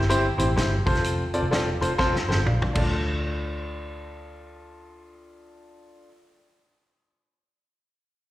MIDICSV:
0, 0, Header, 1, 4, 480
1, 0, Start_track
1, 0, Key_signature, -1, "minor"
1, 0, Tempo, 475436
1, 1051, Time_signature, 4, 2, 24, 8
1, 8387, End_track
2, 0, Start_track
2, 0, Title_t, "Grand piano"
2, 0, Program_c, 0, 0
2, 94, Note_on_c, 0, 64, 102
2, 95, Note_on_c, 0, 67, 98
2, 97, Note_on_c, 0, 60, 108
2, 98, Note_on_c, 0, 72, 115
2, 244, Note_off_c, 0, 64, 0
2, 245, Note_off_c, 0, 67, 0
2, 246, Note_off_c, 0, 60, 0
2, 246, Note_off_c, 0, 72, 0
2, 383, Note_on_c, 0, 64, 81
2, 385, Note_on_c, 0, 60, 89
2, 386, Note_on_c, 0, 72, 94
2, 388, Note_on_c, 0, 67, 82
2, 479, Note_off_c, 0, 64, 0
2, 480, Note_off_c, 0, 60, 0
2, 481, Note_off_c, 0, 72, 0
2, 482, Note_off_c, 0, 67, 0
2, 567, Note_on_c, 0, 64, 69
2, 568, Note_on_c, 0, 60, 77
2, 569, Note_on_c, 0, 67, 72
2, 570, Note_on_c, 0, 72, 84
2, 721, Note_off_c, 0, 60, 0
2, 721, Note_off_c, 0, 64, 0
2, 722, Note_off_c, 0, 67, 0
2, 722, Note_off_c, 0, 72, 0
2, 867, Note_on_c, 0, 65, 80
2, 867, Note_on_c, 0, 69, 81
2, 871, Note_on_c, 0, 60, 83
2, 872, Note_on_c, 0, 72, 94
2, 1228, Note_off_c, 0, 65, 0
2, 1229, Note_off_c, 0, 69, 0
2, 1231, Note_off_c, 0, 60, 0
2, 1231, Note_off_c, 0, 72, 0
2, 1350, Note_on_c, 0, 60, 85
2, 1350, Note_on_c, 0, 74, 97
2, 1351, Note_on_c, 0, 65, 76
2, 1354, Note_on_c, 0, 69, 77
2, 1443, Note_off_c, 0, 60, 0
2, 1443, Note_off_c, 0, 65, 0
2, 1443, Note_off_c, 0, 74, 0
2, 1445, Note_off_c, 0, 69, 0
2, 1524, Note_on_c, 0, 69, 80
2, 1525, Note_on_c, 0, 60, 90
2, 1527, Note_on_c, 0, 74, 87
2, 1529, Note_on_c, 0, 65, 80
2, 1679, Note_off_c, 0, 69, 0
2, 1680, Note_off_c, 0, 60, 0
2, 1680, Note_off_c, 0, 74, 0
2, 1682, Note_off_c, 0, 65, 0
2, 1828, Note_on_c, 0, 60, 77
2, 1829, Note_on_c, 0, 65, 77
2, 1829, Note_on_c, 0, 69, 78
2, 1833, Note_on_c, 0, 72, 92
2, 1921, Note_off_c, 0, 60, 0
2, 1922, Note_off_c, 0, 65, 0
2, 1922, Note_off_c, 0, 69, 0
2, 1924, Note_off_c, 0, 72, 0
2, 2001, Note_on_c, 0, 65, 97
2, 2002, Note_on_c, 0, 69, 97
2, 2003, Note_on_c, 0, 72, 118
2, 2004, Note_on_c, 0, 60, 115
2, 2157, Note_off_c, 0, 65, 0
2, 2158, Note_off_c, 0, 69, 0
2, 2158, Note_off_c, 0, 72, 0
2, 2159, Note_off_c, 0, 60, 0
2, 2307, Note_on_c, 0, 72, 96
2, 2308, Note_on_c, 0, 60, 80
2, 2310, Note_on_c, 0, 69, 73
2, 2311, Note_on_c, 0, 65, 75
2, 2401, Note_off_c, 0, 60, 0
2, 2401, Note_off_c, 0, 72, 0
2, 2402, Note_off_c, 0, 69, 0
2, 2403, Note_off_c, 0, 65, 0
2, 2481, Note_on_c, 0, 77, 60
2, 2486, Note_on_c, 0, 74, 55
2, 2757, Note_on_c, 0, 62, 76
2, 2767, Note_off_c, 0, 77, 0
2, 2770, Note_off_c, 0, 74, 0
2, 2771, Note_on_c, 0, 65, 71
2, 2788, Note_on_c, 0, 69, 65
2, 2802, Note_on_c, 0, 74, 90
2, 6120, Note_off_c, 0, 62, 0
2, 6134, Note_off_c, 0, 65, 0
2, 6151, Note_off_c, 0, 69, 0
2, 6165, Note_off_c, 0, 74, 0
2, 8387, End_track
3, 0, Start_track
3, 0, Title_t, "Picked electric bass"
3, 0, Program_c, 1, 34
3, 0, Note_on_c, 1, 31, 84
3, 280, Note_off_c, 1, 31, 0
3, 386, Note_on_c, 1, 33, 84
3, 565, Note_on_c, 1, 31, 104
3, 581, Note_off_c, 1, 33, 0
3, 798, Note_off_c, 1, 31, 0
3, 873, Note_on_c, 1, 29, 88
3, 1244, Note_off_c, 1, 29, 0
3, 1439, Note_on_c, 1, 29, 88
3, 1741, Note_off_c, 1, 29, 0
3, 1830, Note_on_c, 1, 29, 84
3, 2202, Note_off_c, 1, 29, 0
3, 2306, Note_on_c, 1, 31, 84
3, 2486, Note_off_c, 1, 31, 0
3, 2486, Note_on_c, 1, 34, 87
3, 2718, Note_off_c, 1, 34, 0
3, 2780, Note_on_c, 1, 38, 89
3, 6143, Note_off_c, 1, 38, 0
3, 8387, End_track
4, 0, Start_track
4, 0, Title_t, "Drums"
4, 14, Note_on_c, 9, 38, 35
4, 103, Note_on_c, 9, 42, 95
4, 115, Note_off_c, 9, 38, 0
4, 204, Note_off_c, 9, 42, 0
4, 398, Note_on_c, 9, 42, 77
4, 499, Note_off_c, 9, 42, 0
4, 581, Note_on_c, 9, 38, 122
4, 588, Note_on_c, 9, 42, 92
4, 682, Note_off_c, 9, 38, 0
4, 689, Note_off_c, 9, 42, 0
4, 875, Note_on_c, 9, 36, 108
4, 884, Note_on_c, 9, 46, 53
4, 962, Note_on_c, 9, 42, 46
4, 965, Note_on_c, 9, 38, 35
4, 976, Note_off_c, 9, 36, 0
4, 985, Note_off_c, 9, 46, 0
4, 1054, Note_off_c, 9, 42, 0
4, 1054, Note_on_c, 9, 42, 96
4, 1066, Note_off_c, 9, 38, 0
4, 1155, Note_off_c, 9, 42, 0
4, 1350, Note_on_c, 9, 42, 55
4, 1450, Note_off_c, 9, 42, 0
4, 1541, Note_on_c, 9, 38, 97
4, 1544, Note_on_c, 9, 42, 81
4, 1642, Note_off_c, 9, 38, 0
4, 1645, Note_off_c, 9, 42, 0
4, 1840, Note_on_c, 9, 42, 79
4, 1941, Note_off_c, 9, 42, 0
4, 2011, Note_on_c, 9, 36, 85
4, 2012, Note_on_c, 9, 38, 57
4, 2112, Note_off_c, 9, 36, 0
4, 2113, Note_off_c, 9, 38, 0
4, 2178, Note_on_c, 9, 38, 54
4, 2279, Note_off_c, 9, 38, 0
4, 2331, Note_on_c, 9, 38, 76
4, 2432, Note_off_c, 9, 38, 0
4, 2489, Note_on_c, 9, 45, 75
4, 2590, Note_off_c, 9, 45, 0
4, 2646, Note_on_c, 9, 43, 98
4, 2747, Note_off_c, 9, 43, 0
4, 2780, Note_on_c, 9, 49, 84
4, 2785, Note_on_c, 9, 36, 100
4, 2881, Note_off_c, 9, 49, 0
4, 2886, Note_off_c, 9, 36, 0
4, 8387, End_track
0, 0, End_of_file